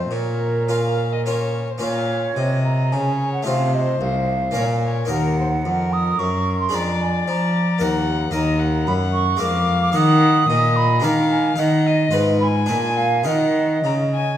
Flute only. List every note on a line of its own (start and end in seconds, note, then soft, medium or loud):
0.10 1.51 A#4 medium
1.81 2.60 C#5 medium
2.65 2.94 A#5 medium
2.92 3.32 G#5 medium
3.33 3.46 F#5 medium
3.47 3.75 F5 medium
3.74 4.00 D#5 medium
4.01 4.95 F5 medium
5.10 5.94 F#5 medium
5.93 6.21 D#6 loud
6.19 6.60 C#6 loud
6.60 6.76 C6 medium
6.75 7.04 A#5 medium
7.02 7.28 G#5 medium
7.28 8.12 A#5 medium
8.34 8.84 A#5 loud
8.87 8.93 B5 loud
9.13 9.42 C#6 loud
9.40 9.81 D6 loud
9.82 9.94 D6 loud
9.94 10.78 D#6 loud
10.76 11.04 B5 loud
11.03 11.30 A#5 medium
11.30 11.57 G#5 loud
11.57 12.39 D#5 loud
12.41 12.47 B5 loud
12.69 12.99 G#5 loud
12.97 13.28 F5 loud
13.26 14.37 D#5 loud